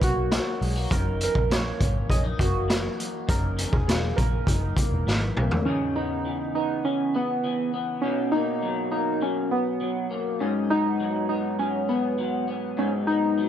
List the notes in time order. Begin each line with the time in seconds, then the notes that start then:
Already playing: B2 F#3 D#4
0.02 B1 A#3 F#4, kick, closed hi-hat
0.32 F#3, snare, closed hi-hat
0.61 B1 G#3, open hi-hat
0.76 A#3
0.90 F#1 F#2 D#4 A#4, kick, closed hi-hat
1.21 E3 A#4, closed hi-hat
1.35 A#1, kick
1.50 A#3 C#5, snare, closed hi-hat
1.80 G#1 E3, kick, closed hi-hat
2.09 A#1 C#4 D#5, kick, closed hi-hat
2.24 D#4
2.39 F#1 A#3 F#4, kick, closed hi-hat
2.69 E3, snare, closed hi-hat
2.98 A#3, closed hi-hat
3.28 F#1 F#2 D#4 A#4, kick, closed hi-hat
3.57 E3, closed hi-hat
3.72 E1 G#4, kick
3.87 E1 A#3 G#4, snare, closed hi-hat
4.17 A#1 E3 A#4, kick, closed hi-hat
4.47 F#1 D#4, kick, closed hi-hat
4.76 A#3, muted picked electric bass stroke, kick, closed hi-hat
4.92 E1
5.07 G#1 E3, snare
5.36 B1 A#3, mid tom
5.51 floor tom
5.65 C#3 C#4 D#4
5.96 B3 D#4
6.25 E3
6.55 B3 D#4
6.85 E3 C#4
7.14 B3
7.44 E3
7.74 B3
8.01 B2 C#4 D#4
8.32 A#3 D#4
8.63 F#3
8.91 A#3 D#4
9.21 F#3 C#4
9.51 B3
9.81 F#3
10.11 A#3
10.40 G#2 C#4 D#4
10.70 B3 D#4
11.00 F#3
11.29 B3 D#4
11.59 F#3 C#4
11.89 B3
12.18 F#3
12.48 B3
12.77 G#2 C#4 D#4
13.07 B3 D#4
13.38 F#3